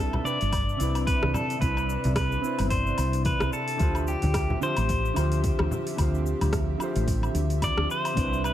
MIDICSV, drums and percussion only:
0, 0, Header, 1, 2, 480
1, 0, Start_track
1, 0, Tempo, 545455
1, 1426, Time_signature, 4, 2, 24, 8
1, 7510, End_track
2, 0, Start_track
2, 0, Title_t, "Drums"
2, 117, Note_on_c, 9, 77, 72
2, 121, Note_on_c, 9, 64, 80
2, 205, Note_off_c, 9, 77, 0
2, 209, Note_off_c, 9, 64, 0
2, 230, Note_on_c, 9, 69, 80
2, 318, Note_off_c, 9, 69, 0
2, 359, Note_on_c, 9, 46, 42
2, 366, Note_on_c, 9, 69, 32
2, 447, Note_off_c, 9, 46, 0
2, 454, Note_off_c, 9, 69, 0
2, 462, Note_on_c, 9, 46, 48
2, 462, Note_on_c, 9, 77, 76
2, 464, Note_on_c, 9, 36, 100
2, 469, Note_on_c, 9, 69, 45
2, 550, Note_off_c, 9, 46, 0
2, 550, Note_off_c, 9, 77, 0
2, 552, Note_off_c, 9, 36, 0
2, 557, Note_off_c, 9, 69, 0
2, 608, Note_on_c, 9, 69, 29
2, 696, Note_off_c, 9, 69, 0
2, 703, Note_on_c, 9, 46, 45
2, 710, Note_on_c, 9, 69, 77
2, 791, Note_off_c, 9, 46, 0
2, 798, Note_off_c, 9, 69, 0
2, 838, Note_on_c, 9, 46, 41
2, 838, Note_on_c, 9, 77, 71
2, 845, Note_on_c, 9, 69, 34
2, 926, Note_off_c, 9, 46, 0
2, 926, Note_off_c, 9, 77, 0
2, 933, Note_off_c, 9, 69, 0
2, 944, Note_on_c, 9, 36, 108
2, 945, Note_on_c, 9, 46, 51
2, 952, Note_on_c, 9, 69, 44
2, 1032, Note_off_c, 9, 36, 0
2, 1033, Note_off_c, 9, 46, 0
2, 1040, Note_off_c, 9, 69, 0
2, 1079, Note_on_c, 9, 37, 73
2, 1079, Note_on_c, 9, 63, 72
2, 1167, Note_off_c, 9, 37, 0
2, 1167, Note_off_c, 9, 63, 0
2, 1183, Note_on_c, 9, 64, 84
2, 1183, Note_on_c, 9, 77, 69
2, 1190, Note_on_c, 9, 69, 76
2, 1271, Note_off_c, 9, 64, 0
2, 1271, Note_off_c, 9, 77, 0
2, 1278, Note_off_c, 9, 69, 0
2, 1321, Note_on_c, 9, 46, 40
2, 1328, Note_on_c, 9, 69, 33
2, 1409, Note_off_c, 9, 46, 0
2, 1416, Note_off_c, 9, 69, 0
2, 1422, Note_on_c, 9, 46, 49
2, 1423, Note_on_c, 9, 36, 100
2, 1429, Note_on_c, 9, 69, 43
2, 1510, Note_off_c, 9, 46, 0
2, 1511, Note_off_c, 9, 36, 0
2, 1517, Note_off_c, 9, 69, 0
2, 1558, Note_on_c, 9, 77, 71
2, 1565, Note_on_c, 9, 69, 30
2, 1646, Note_off_c, 9, 77, 0
2, 1653, Note_off_c, 9, 69, 0
2, 1668, Note_on_c, 9, 69, 70
2, 1756, Note_off_c, 9, 69, 0
2, 1794, Note_on_c, 9, 46, 38
2, 1801, Note_on_c, 9, 69, 29
2, 1804, Note_on_c, 9, 64, 78
2, 1882, Note_off_c, 9, 46, 0
2, 1889, Note_off_c, 9, 69, 0
2, 1892, Note_off_c, 9, 64, 0
2, 1899, Note_on_c, 9, 37, 75
2, 1899, Note_on_c, 9, 46, 50
2, 1899, Note_on_c, 9, 77, 78
2, 1903, Note_on_c, 9, 36, 106
2, 1905, Note_on_c, 9, 69, 45
2, 1987, Note_off_c, 9, 37, 0
2, 1987, Note_off_c, 9, 46, 0
2, 1987, Note_off_c, 9, 77, 0
2, 1991, Note_off_c, 9, 36, 0
2, 1993, Note_off_c, 9, 69, 0
2, 2040, Note_on_c, 9, 69, 29
2, 2128, Note_off_c, 9, 69, 0
2, 2147, Note_on_c, 9, 69, 79
2, 2235, Note_off_c, 9, 69, 0
2, 2275, Note_on_c, 9, 46, 40
2, 2275, Note_on_c, 9, 77, 75
2, 2282, Note_on_c, 9, 69, 34
2, 2363, Note_off_c, 9, 46, 0
2, 2363, Note_off_c, 9, 77, 0
2, 2370, Note_off_c, 9, 69, 0
2, 2380, Note_on_c, 9, 46, 48
2, 2383, Note_on_c, 9, 36, 94
2, 2387, Note_on_c, 9, 69, 44
2, 2468, Note_off_c, 9, 46, 0
2, 2471, Note_off_c, 9, 36, 0
2, 2475, Note_off_c, 9, 69, 0
2, 2523, Note_on_c, 9, 69, 27
2, 2611, Note_off_c, 9, 69, 0
2, 2620, Note_on_c, 9, 46, 45
2, 2620, Note_on_c, 9, 77, 68
2, 2627, Note_on_c, 9, 69, 76
2, 2708, Note_off_c, 9, 46, 0
2, 2708, Note_off_c, 9, 77, 0
2, 2715, Note_off_c, 9, 69, 0
2, 2757, Note_on_c, 9, 46, 39
2, 2763, Note_on_c, 9, 69, 32
2, 2845, Note_off_c, 9, 46, 0
2, 2851, Note_off_c, 9, 69, 0
2, 2859, Note_on_c, 9, 46, 51
2, 2860, Note_on_c, 9, 63, 65
2, 2864, Note_on_c, 9, 36, 109
2, 2866, Note_on_c, 9, 69, 44
2, 2947, Note_off_c, 9, 46, 0
2, 2948, Note_off_c, 9, 63, 0
2, 2952, Note_off_c, 9, 36, 0
2, 2954, Note_off_c, 9, 69, 0
2, 2996, Note_on_c, 9, 37, 72
2, 2996, Note_on_c, 9, 77, 66
2, 3003, Note_on_c, 9, 69, 28
2, 3084, Note_off_c, 9, 37, 0
2, 3084, Note_off_c, 9, 77, 0
2, 3091, Note_off_c, 9, 69, 0
2, 3104, Note_on_c, 9, 69, 81
2, 3192, Note_off_c, 9, 69, 0
2, 3235, Note_on_c, 9, 46, 42
2, 3242, Note_on_c, 9, 69, 35
2, 3323, Note_off_c, 9, 46, 0
2, 3330, Note_off_c, 9, 69, 0
2, 3339, Note_on_c, 9, 46, 45
2, 3345, Note_on_c, 9, 36, 103
2, 3346, Note_on_c, 9, 69, 40
2, 3427, Note_off_c, 9, 46, 0
2, 3433, Note_off_c, 9, 36, 0
2, 3434, Note_off_c, 9, 69, 0
2, 3475, Note_on_c, 9, 77, 73
2, 3482, Note_on_c, 9, 69, 31
2, 3563, Note_off_c, 9, 77, 0
2, 3570, Note_off_c, 9, 69, 0
2, 3585, Note_on_c, 9, 69, 74
2, 3673, Note_off_c, 9, 69, 0
2, 3714, Note_on_c, 9, 46, 39
2, 3721, Note_on_c, 9, 64, 77
2, 3721, Note_on_c, 9, 69, 27
2, 3802, Note_off_c, 9, 46, 0
2, 3809, Note_off_c, 9, 64, 0
2, 3809, Note_off_c, 9, 69, 0
2, 3819, Note_on_c, 9, 37, 71
2, 3819, Note_on_c, 9, 46, 54
2, 3819, Note_on_c, 9, 77, 77
2, 3826, Note_on_c, 9, 69, 44
2, 3827, Note_on_c, 9, 36, 107
2, 3907, Note_off_c, 9, 37, 0
2, 3907, Note_off_c, 9, 46, 0
2, 3907, Note_off_c, 9, 77, 0
2, 3914, Note_off_c, 9, 69, 0
2, 3915, Note_off_c, 9, 36, 0
2, 3961, Note_on_c, 9, 64, 80
2, 4049, Note_off_c, 9, 64, 0
2, 4066, Note_on_c, 9, 69, 82
2, 4154, Note_off_c, 9, 69, 0
2, 4194, Note_on_c, 9, 46, 42
2, 4194, Note_on_c, 9, 77, 78
2, 4201, Note_on_c, 9, 69, 34
2, 4282, Note_off_c, 9, 46, 0
2, 4282, Note_off_c, 9, 77, 0
2, 4289, Note_off_c, 9, 69, 0
2, 4303, Note_on_c, 9, 46, 50
2, 4308, Note_on_c, 9, 36, 88
2, 4310, Note_on_c, 9, 69, 43
2, 4391, Note_off_c, 9, 46, 0
2, 4396, Note_off_c, 9, 36, 0
2, 4398, Note_off_c, 9, 69, 0
2, 4447, Note_on_c, 9, 69, 28
2, 4535, Note_off_c, 9, 69, 0
2, 4544, Note_on_c, 9, 46, 45
2, 4544, Note_on_c, 9, 77, 75
2, 4551, Note_on_c, 9, 69, 71
2, 4632, Note_off_c, 9, 46, 0
2, 4632, Note_off_c, 9, 77, 0
2, 4639, Note_off_c, 9, 69, 0
2, 4679, Note_on_c, 9, 46, 39
2, 4686, Note_on_c, 9, 69, 31
2, 4767, Note_off_c, 9, 46, 0
2, 4774, Note_off_c, 9, 69, 0
2, 4785, Note_on_c, 9, 46, 52
2, 4788, Note_on_c, 9, 36, 102
2, 4791, Note_on_c, 9, 69, 41
2, 4873, Note_off_c, 9, 46, 0
2, 4876, Note_off_c, 9, 36, 0
2, 4879, Note_off_c, 9, 69, 0
2, 4919, Note_on_c, 9, 37, 64
2, 4919, Note_on_c, 9, 77, 75
2, 4923, Note_on_c, 9, 63, 73
2, 5007, Note_off_c, 9, 37, 0
2, 5007, Note_off_c, 9, 77, 0
2, 5011, Note_off_c, 9, 63, 0
2, 5027, Note_on_c, 9, 64, 81
2, 5032, Note_on_c, 9, 69, 73
2, 5115, Note_off_c, 9, 64, 0
2, 5120, Note_off_c, 9, 69, 0
2, 5163, Note_on_c, 9, 46, 43
2, 5170, Note_on_c, 9, 69, 32
2, 5251, Note_off_c, 9, 46, 0
2, 5258, Note_off_c, 9, 69, 0
2, 5266, Note_on_c, 9, 46, 51
2, 5266, Note_on_c, 9, 77, 72
2, 5268, Note_on_c, 9, 36, 92
2, 5273, Note_on_c, 9, 69, 39
2, 5354, Note_off_c, 9, 46, 0
2, 5354, Note_off_c, 9, 77, 0
2, 5356, Note_off_c, 9, 36, 0
2, 5361, Note_off_c, 9, 69, 0
2, 5409, Note_on_c, 9, 69, 29
2, 5497, Note_off_c, 9, 69, 0
2, 5510, Note_on_c, 9, 69, 68
2, 5598, Note_off_c, 9, 69, 0
2, 5644, Note_on_c, 9, 46, 40
2, 5644, Note_on_c, 9, 77, 76
2, 5645, Note_on_c, 9, 64, 67
2, 5651, Note_on_c, 9, 69, 29
2, 5732, Note_off_c, 9, 46, 0
2, 5732, Note_off_c, 9, 77, 0
2, 5733, Note_off_c, 9, 64, 0
2, 5739, Note_off_c, 9, 69, 0
2, 5744, Note_on_c, 9, 37, 77
2, 5744, Note_on_c, 9, 46, 53
2, 5747, Note_on_c, 9, 36, 101
2, 5751, Note_on_c, 9, 69, 43
2, 5832, Note_off_c, 9, 37, 0
2, 5832, Note_off_c, 9, 46, 0
2, 5835, Note_off_c, 9, 36, 0
2, 5839, Note_off_c, 9, 69, 0
2, 5984, Note_on_c, 9, 77, 80
2, 5991, Note_on_c, 9, 69, 78
2, 6072, Note_off_c, 9, 77, 0
2, 6079, Note_off_c, 9, 69, 0
2, 6121, Note_on_c, 9, 46, 43
2, 6128, Note_on_c, 9, 69, 31
2, 6209, Note_off_c, 9, 46, 0
2, 6216, Note_off_c, 9, 69, 0
2, 6227, Note_on_c, 9, 36, 90
2, 6228, Note_on_c, 9, 46, 52
2, 6235, Note_on_c, 9, 69, 42
2, 6315, Note_off_c, 9, 36, 0
2, 6316, Note_off_c, 9, 46, 0
2, 6323, Note_off_c, 9, 69, 0
2, 6363, Note_on_c, 9, 77, 70
2, 6370, Note_on_c, 9, 69, 26
2, 6451, Note_off_c, 9, 77, 0
2, 6458, Note_off_c, 9, 69, 0
2, 6466, Note_on_c, 9, 46, 48
2, 6473, Note_on_c, 9, 69, 67
2, 6554, Note_off_c, 9, 46, 0
2, 6561, Note_off_c, 9, 69, 0
2, 6601, Note_on_c, 9, 46, 41
2, 6608, Note_on_c, 9, 69, 30
2, 6689, Note_off_c, 9, 46, 0
2, 6696, Note_off_c, 9, 69, 0
2, 6707, Note_on_c, 9, 46, 52
2, 6707, Note_on_c, 9, 63, 62
2, 6707, Note_on_c, 9, 77, 83
2, 6708, Note_on_c, 9, 36, 95
2, 6714, Note_on_c, 9, 69, 38
2, 6795, Note_off_c, 9, 46, 0
2, 6795, Note_off_c, 9, 63, 0
2, 6795, Note_off_c, 9, 77, 0
2, 6796, Note_off_c, 9, 36, 0
2, 6802, Note_off_c, 9, 69, 0
2, 6842, Note_on_c, 9, 37, 68
2, 6930, Note_off_c, 9, 37, 0
2, 6956, Note_on_c, 9, 69, 77
2, 7044, Note_off_c, 9, 69, 0
2, 7085, Note_on_c, 9, 46, 40
2, 7085, Note_on_c, 9, 77, 78
2, 7092, Note_on_c, 9, 69, 33
2, 7173, Note_off_c, 9, 46, 0
2, 7173, Note_off_c, 9, 77, 0
2, 7180, Note_off_c, 9, 69, 0
2, 7188, Note_on_c, 9, 36, 97
2, 7190, Note_on_c, 9, 46, 52
2, 7197, Note_on_c, 9, 69, 36
2, 7276, Note_off_c, 9, 36, 0
2, 7278, Note_off_c, 9, 46, 0
2, 7285, Note_off_c, 9, 69, 0
2, 7333, Note_on_c, 9, 69, 28
2, 7421, Note_off_c, 9, 69, 0
2, 7430, Note_on_c, 9, 77, 77
2, 7437, Note_on_c, 9, 69, 66
2, 7510, Note_off_c, 9, 69, 0
2, 7510, Note_off_c, 9, 77, 0
2, 7510, End_track
0, 0, End_of_file